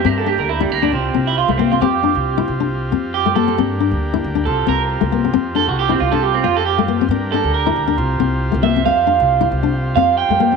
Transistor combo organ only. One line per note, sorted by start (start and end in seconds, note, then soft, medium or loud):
0.00 8.81 G4 medium
0.06 0.93 A#3 medium
0.06 0.93 D4 medium
0.94 3.56 C4 medium
0.94 3.56 F4 medium
3.59 4.46 A#3 medium
3.59 4.46 D4 medium
4.47 5.33 C4 medium
4.47 7.08 F4 medium
5.34 7.09 C4 medium
7.11 7.98 D4 medium
7.11 7.98 A#4 medium
7.97 10.56 F4 medium
7.97 10.56 C5 medium
8.85 10.56 G4 medium